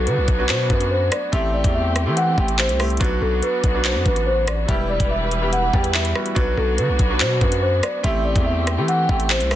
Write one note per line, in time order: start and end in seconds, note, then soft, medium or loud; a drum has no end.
0.00 0.24 F#3 loud
0.00 0.24 B3 medium
0.00 1.31 B3 medium
0.00 0.25 D4 medium
0.00 1.31 D4 medium
0.00 0.25 F#4 loud
0.00 1.31 F#4 medium
0.07 0.19 D3 loud
0.07 0.46 B4 medium
0.07 closed hi-hat medium
0.17 0.27 B1 loud
0.28 0.51 B1 loud
0.28 kick loud
0.28 closed hi-hat medium
0.38 1.07 F#3 medium
0.38 1.07 B3 medium
0.38 1.07 D4 medium
0.38 1.08 F#4 medium
0.49 0.69 B2 loud
0.49 0.67 C5 medium
0.49 clap loud
0.49 closed hi-hat medium
0.70 1.10 F#2 loud
0.70 0.88 B4 medium
0.70 kick loud
0.70 closed hi-hat medium
0.81 closed hi-hat medium
0.91 1.09 C5 medium
1.12 1.30 D5 medium
1.12 cross-stick loud
1.12 closed hi-hat medium
1.32 1.63 A1 loud
1.32 1.92 A3 loud
1.32 2.99 A3 medium
1.32 1.93 C4 loud
1.32 2.99 C4 medium
1.32 1.93 E4 medium
1.32 2.99 G4 medium
1.32 1.93 G4 loud
1.32 1.51 E5 loud
1.32 kick loud
1.32 closed hi-hat medium
1.54 1.72 D5 medium
1.64 2.08 E2 loud
1.64 kick loud
1.64 closed hi-hat medium
1.75 2.14 E5 medium
1.96 cross-stick medium
1.96 closed hi-hat medium
2.06 2.36 E3 loud
2.06 2.32 A3 medium
2.06 2.32 C4 medium
2.06 2.32 E4 medium
2.06 2.32 G4 medium
2.17 2.35 F#5 medium
2.17 closed hi-hat medium
2.38 2.71 A1 loud
2.38 2.72 A3 medium
2.38 2.72 C4 medium
2.38 2.72 E4 medium
2.38 2.73 G4 medium
2.38 kick loud
2.48 closed hi-hat medium
2.59 2.77 C5 medium
2.59 clap loud
2.69 2.99 C2 loud
2.69 closed hi-hat medium
2.79 2.97 A3 medium
2.79 2.97 C4 medium
2.79 2.97 E4 medium
2.79 2.97 G4 medium
2.79 cross-stick loud
2.79 open hi-hat medium
2.90 closed hi-hat soft
2.97 3.60 F#3 loud
2.97 3.60 B3 medium
2.97 3.61 D4 medium
2.97 3.19 B4 medium
2.97 closed hi-hat medium
3.01 3.21 B1 loud
3.01 4.67 B3 medium
3.01 4.67 D4 medium
3.01 4.67 F#4 medium
3.01 3.61 F#4 loud
3.01 kick loud
3.01 closed hi-hat medium
3.21 3.42 B1 loud
3.21 3.40 A4 medium
3.43 3.82 B4 medium
3.43 closed hi-hat medium
3.64 3.97 B1 loud
3.64 kick medium
3.64 closed hi-hat medium
3.74 4.43 F#3 medium
3.74 4.43 B3 medium
3.74 4.43 D4 medium
3.74 4.43 F#4 medium
3.85 4.03 C5 medium
3.85 clap loud
3.85 closed hi-hat medium
3.95 4.05 F#2 loud
4.06 4.66 A1 loud
4.06 4.24 B4 medium
4.06 kick loud
4.06 closed hi-hat medium
4.16 closed hi-hat medium
4.26 4.45 C5 medium
4.47 cross-stick loud
4.47 closed hi-hat medium
4.68 4.99 E1 loud
4.68 6.35 E3 medium
4.68 5.28 G3 medium
4.68 5.28 B3 medium
4.68 6.35 E4 medium
4.68 5.29 E4 medium
4.68 6.35 G4 medium
4.68 5.29 G4 loud
4.68 6.35 B4 medium
4.68 4.87 E5 medium
4.68 kick loud
4.68 closed hi-hat medium
4.90 5.08 D5 medium
5.00 5.70 E1 loud
5.00 kick loud
5.00 closed hi-hat medium
5.11 5.50 E5 medium
5.31 closed hi-hat medium
5.42 5.68 G3 medium
5.42 5.68 B3 medium
5.42 5.68 E4 medium
5.42 5.68 G4 medium
5.53 5.71 F#5 medium
5.53 closed hi-hat medium
5.73 6.14 E2 loud
5.73 6.08 G3 medium
5.73 6.08 B3 medium
5.73 6.08 E4 medium
5.73 6.08 G4 medium
5.73 kick loud
5.84 closed hi-hat medium
5.94 6.34 E5 medium
5.94 clap loud
6.05 closed hi-hat medium
6.15 6.32 G3 medium
6.15 6.33 B3 medium
6.15 6.33 E4 medium
6.15 6.33 F#4 medium
6.15 cross-stick loud
6.26 closed hi-hat medium
6.35 6.57 B1 loud
6.35 6.96 F#3 loud
6.35 6.96 B3 medium
6.35 8.03 B3 medium
6.35 6.96 D4 medium
6.35 8.03 D4 medium
6.35 6.96 F#4 loud
6.35 8.03 F#4 medium
6.35 6.55 B4 loud
6.35 kick loud
6.35 closed hi-hat medium
6.57 6.80 B1 loud
6.57 6.75 A4 medium
6.78 6.90 D3 loud
6.78 7.18 B4 medium
6.78 closed hi-hat medium
6.89 6.99 B1 loud
6.99 7.22 B1 loud
6.99 kick medium
6.99 closed hi-hat medium
7.10 7.78 F#3 medium
7.10 7.78 B3 medium
7.10 7.79 D4 medium
7.10 7.79 F#4 medium
7.20 7.40 B2 loud
7.20 7.39 C5 medium
7.20 clap loud
7.20 closed hi-hat medium
7.41 7.82 F#2 loud
7.41 7.59 B4 medium
7.41 kick loud
7.41 closed hi-hat medium
7.52 closed hi-hat medium
7.62 7.80 C5 medium
7.83 8.01 D5 medium
7.83 cross-stick loud
7.83 closed hi-hat medium
8.03 8.34 A1 loud
8.03 8.64 A3 loud
8.03 9.55 A3 medium
8.03 8.64 C4 loud
8.03 9.55 C4 medium
8.03 8.64 E4 medium
8.03 9.55 G4 medium
8.03 8.64 G4 loud
8.03 8.22 E5 loud
8.03 kick loud
8.03 closed hi-hat medium
8.25 8.43 D5 medium
8.36 8.79 E2 loud
8.36 kick loud
8.36 closed hi-hat medium
8.46 8.86 E5 medium
8.67 cross-stick loud
8.67 closed hi-hat medium
8.77 9.08 E3 loud
8.77 9.03 A3 medium
8.77 9.03 C4 medium
8.77 9.04 E4 medium
8.77 9.04 G4 medium
8.88 9.07 F#5 medium
8.88 closed hi-hat medium
9.09 9.42 A1 loud
9.09 9.43 A3 medium
9.09 9.44 C4 medium
9.09 9.44 E4 medium
9.09 9.44 G4 medium
9.09 kick loud
9.20 closed hi-hat medium
9.30 9.48 C5 medium
9.30 clap loud
9.40 9.55 C2 loud
9.40 closed hi-hat medium
9.51 9.55 A3 medium
9.51 9.55 C4 medium
9.51 9.55 E4 medium
9.51 9.55 G4 medium
9.51 cross-stick loud
9.51 open hi-hat medium